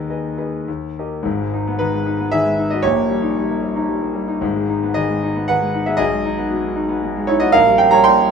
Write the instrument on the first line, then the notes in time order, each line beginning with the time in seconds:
grand piano
Already playing: D#2 D#3 G#4 B4 D#5
0.10 G#4 B4 D#5
0.37 G#4 B4 D#5
0.68 D#2
0.99 G4 A#4 D#5
1.23 G#1 G#2
1.40 G#3
1.54 D#4
1.67 B3
1.79 D#3 D#4 B4
1.93 G#3
2.06 D#4
2.20 B3
2.32 D#3 G#4 E5
2.44 G#3
2.59 D#4
2.70 B3 F#4 D#5
2.82 A#1 A#2 G4 C#5
2.95 A#3
3.09 G3
3.22 D#4
3.37 G3
3.50 A#3
3.62 G3
3.76 D#4
3.89 G3
4.02 A#3
4.14 G3
4.28 D#4
4.41 G#1 G#2
4.56 G#3
4.69 D#4
4.83 B3
4.94 D#3 G#4 D#5
5.09 G#3
5.23 D#4
5.36 B3
5.48 D#3 B4 F#5
5.61 G#3
5.74 D#4
5.86 B3 G#4 E5
5.97 B1 G#4 D#5
6.12 G#3
6.26 D#4
6.37 B3
6.51 B2
6.64 G#3
6.76 D#4
6.89 B3
7.02 B2
7.16 G#3
7.27 D#4 E4 C#5
7.40 B3 F#4 D#5
7.52 A#1 A#4 F5
7.66 G3
7.78 C#4 A#4 G5
7.91 G3 C#5 A#5
8.04 A#2 G5 C6
8.19 G3